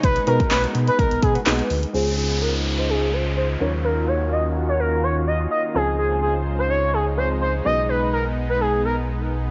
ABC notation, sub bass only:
X:1
M:4/4
L:1/16
Q:1/4=126
K:Db
V:1 name="Sub bass" clef=bass
_C,,2 _C,2 C,,2 C,2 C,, C,, C,2 C,,2 =D,,2 | D,,12- D,,2 E,,2- | E,,12- E,,2 z2 | D,,16 |
_C,,16 |]